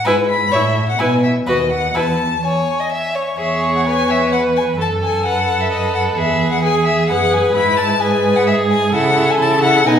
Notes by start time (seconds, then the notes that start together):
0.05 G#2 E4 B4 G#5
0.29 B5
0.51 A2 E4 C#5 E5
0.89 F#5
0.99 B2 E4 B4 G#5
1.23 E5
1.47 D#2 F#4 B4 D#5
1.71 F#5
1.95 E2 E4 B4 A5
2.44 C#5 G#5
2.80 D#5
2.92 E5
3.15 C#5
3.38 E2 G#4 C#5 E5
3.76 F#5
3.86 B4 G#5
4.11 E5
4.32 B4 F#5
4.56 G#5
4.78 F#2 A4 A5
5.03 G#5
5.25 A4 B4 F#5
5.61 E5
5.72 D#5
5.95 F#5
6.17 E2 G#4 E5
6.52 F#5
6.63 G#4 G#5
6.86 E5
7.09 F#2 G#4 B4 F#5
7.33 G#5
7.55 G#2 E4 B5
7.77 A5
8.00 G#4 B4 G#5
8.36 F#5
8.47 G#4 E5
8.71 G#5
8.94 C#3 E4 A4 F#5
9.17 E4
9.30 G#5
9.40 C#3 E4 A5
9.62 E4 F#5
9.86 B2 D#4 B4 G#5